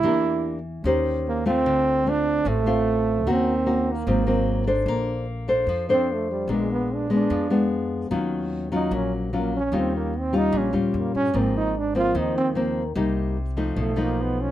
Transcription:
<<
  \new Staff \with { instrumentName = "Trombone" } { \time 4/4 \key bes \major \tempo 4 = 148 e'4. r4. bes8 c'8~ | c'4 d'4 a2 | c'4. bes2 r8 | r2 r8 c'8 a8 g8 |
aes8 ces'8 d'8 d'4. r4 | r4. ees'8 des'8 f8 bes8 des'8 | c'8 bes8 c'8 ees'8 des'8 f8 bes8 des'8 | c'8 ees'8 d'8 f'8 ees'8 c'8 r4 |
r2 a8 bes8 b8 des'8 | }
  \new Staff \with { instrumentName = "Nylon-string guitar" } { \time 4/4 \key bes \major << { <bes d' g'>4. r8 <des' g' c''>4. <a c' f'>8~ | <a c' f'>4 <a c' f'>4. <a c' f'>4. | <bes des' ges'>8 r8 <bes des' ges'>8 r8 <ges bes c'>8 <ges bes c'>4 <d' a' c''>8~ | <d' a' c''>4 r8 <d' a' c''>4 <d' a' c''>4. |
<aes ces' d'>4. <aes ces' d'>4 <aes ces' d'>4. | <ges des' f'>4. <ges des' f'>4. <ges des' f'>8 r8 | <g des' f'>4 r8 <g des' f'>4 <g des' f'>4. | <f bes c'>4 r8 <f bes c'>4. <f bes c'>8 r8 |
<g bes ees'>4 r8 <f a ees'>4 <eis a dis'>4. | } \\ { e2 ees2 | d2 a,2 | ees2 aes,2 | bes2 f2 |
bes,2 f2 | ees2 bes,2 | ees2 bes,2 | aes,2 ees2 |
c2 b,2 | } >> }
  \new Staff \with { instrumentName = "Upright bass" } { \clef bass \time 4/4 \key bes \major e,2 ees,2 | d,2 a,,2 | ees,2 aes,,2 | bes,,2 f,2 |
bes,,2 f,2 | ees,2 bes,,2 | ees,2 bes,,8 ees,8 f,8 g,8 | aes,,2 ees,2 |
c,2 b,,2 | }
>>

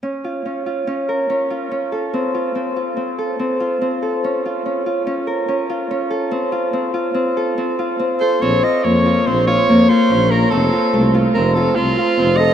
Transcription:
<<
  \new Staff \with { instrumentName = "Soprano saxophone" } { \time 5/4 \key bes \minor \tempo 4 = 143 r1 r4 | r1 r4 | r1 r4 | r1 r8 c''8 |
des''8 ees''8 des''4 c''8 des''4 c''4 bes'8 | a'4. r8 bes'8 a'8 f'4. ees''8 | }
  \new Staff \with { instrumentName = "Harp" } { \time 5/4 \key bes \minor des'8 f'8 des'8 f'8 des'8 bes'8 des'8 f'8 des'8 a'8 | c'8 f'8 c'8 f'8 c'8 a'8 c'8 f'8 c'8 a'8 | des'8 f'8 des'8 f'8 des'8 bes'8 des'8 f'8 des'8 a'8 | c'8 f'8 c'8 f'8 c'8 a'8 c'8 f'8 c'8 a'8 |
c'8 f'8 bes8 f'8 c'8 f'8 bes8 f'8 des'8 bes'8 | c'8 f'8 a8 f'8 c'8 f'8 c'8 f'8 c'8 a'8 | }
  \new Staff \with { instrumentName = "Tuba" } { \clef bass \time 5/4 \key bes \minor r1 r4 | r1 r4 | r1 r4 | r1 r4 |
bes,,8 r8 f,4 bes,,4 f,8 r8 bes,,4 | f,,8 r8 c,4 f,,4 c,8 r8 f,,4 | }
>>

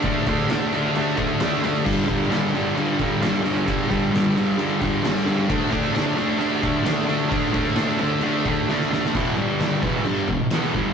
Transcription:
<<
  \new Staff \with { instrumentName = "Distorted electric guitar" } { \clef bass \time 4/4 \key d \lydian \tempo 4 = 132 <d a d'>8 <d a d'>8 <d a d'>8 <d a d'>8 <d a d'>8 <d a d'>8 <d a d'>8 <d a d'>8 | <g, d g>8 <g, d g>8 <g, d g>8 <g, d g>8 <g, d g>8 <g, d g>8 <g, d g>8 <g, d g>8 | <g, d g>8 <g, d g>8 <g, d g>8 <g, d g>8 <g, d g>8 <g, d g>8 <g, d g>8 <g, d g>8 | <d a d'>8 <d a d'>8 <d a d'>8 <d a d'>8 <d a d'>8 <d a d'>8 <d a d'>8 <d a d'>8 |
<d a d'>8 <d a d'>8 <d a d'>8 <d a d'>8 <d a d'>8 <d a d'>8 <d a d'>8 <d a d'>8 | <e, b, e>8 <g, d g>4 <e, b, e>8 <g, d g>8 <e, b,>8 <e, b, e>8 <g, d g>8 | }
  \new DrumStaff \with { instrumentName = "Drums" } \drummode { \time 4/4 <bd cymr>8 <bd cymr>16 sn16 <cymr sn>8 cymr8 cymr8 <bd cymr>8 <cymr sn>8 cymr8 | <cymc bd>8 <bd cymr>16 sn16 <cymr sn>8 cymr8 cymr8 <bd cymr>8 <cymr sn>16 sn16 cymr8 | <bd cymr>8 <bd cymr>8 <cymr sn>8 cymr8 cymr8 <bd cymr>8 <cymr sn>16 sn16 cymr8 | <bd cymr>8 <bd cymr>16 sn16 <cymr sn>8 cymr8 cymr8 <bd cymr>8 <cymr sn>16 sn16 cymr8 |
<bd cymr>8 <bd cymr>16 sn16 <cymr sn>8 cymr8 cymr8 <bd cymr>8 sn16 sn16 sn16 sn16 | <cymc bd>8 cymc8 <cymc sn>8 <cymc bd sn>8 cymc8 <cymc bd>8 <cymc sn>8 <cymc bd>8 | }
>>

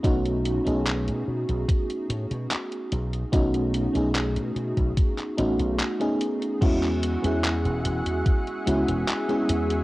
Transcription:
<<
  \new Staff \with { instrumentName = "Analog synth pad" } { \time 4/4 \key e \major \tempo 4 = 73 r1 | r1 | <gis' e'' fis'' cis'''>1 | }
  \new Staff \with { instrumentName = "FM electric piano" } { \time 4/4 \key e \major <a b cis' dis' fis'>8. <a b cis' dis' gis'>2.~ <a b cis' dis' gis'>16 | <a b cis' dis' fis'>8. <a b cis' dis' gis'>4.~ <a b cis' dis' gis'>16 <a b cis' dis' fis'>8. <a b cis' dis' gis'>8. | <gis b cis' e' fis'>8. <gis b cis' e' gis'>4.~ <gis b cis' e' gis'>16 <gis b cis' e' fis'>8. <gis b cis' e' gis'>8. | }
  \new Staff \with { instrumentName = "Slap bass" } { \clef bass \time 4/4 \key e \major b,,8. b,,8 b,16 b,16 b,,16 r8 a,16 b,16 r8 b,,8 | b,,8. b,,8 b,16 b,16 b,,16 r8 a,,16 b,,16 r4 | e,8. e,8 e,,16 e,,16 e,16 r8 cis,16 e,,16 r8 e,8 | }
  \new DrumStaff \with { instrumentName = "Drums" } \drummode { \time 4/4 <hh bd>16 hh16 hh16 hh16 <hc hh>16 hh8 hh16 <hh bd>16 hh16 hh16 hh16 <hc hh>16 hh16 hh16 hh16 | <hh bd>16 hh16 hh16 hh16 <hc hh>16 hh16 hh16 <hh bd>16 <hh bd>16 <hc hh>16 hh16 hh16 <hc hh>16 hh16 hh16 hh16 | <cymc hh bd>16 <hc hh>16 hh16 hh16 <hc hh>16 hh16 hh16 hh16 <hh bd>16 hh16 hh16 hh16 <hc hh>16 hh16 hh16 hh16 | }
>>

